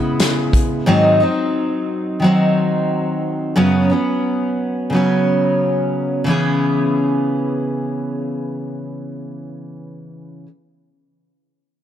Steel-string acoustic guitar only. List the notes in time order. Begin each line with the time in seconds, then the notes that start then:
Already playing: C#3 G#3 B3 E4
0.86 G#2 D#3 F#3 C4 D#4
1.20 F#3 C4 D#4
2.20 D#3 F#3
2.24 C4 D#4
3.56 F#2 C#3 F#3 B3 C#4
3.90 F#3 B3 C#4
4.90 C#3 F#3
4.94 B3 C#4
6.24 C#3 E3 B3
6.29 C#4 G#4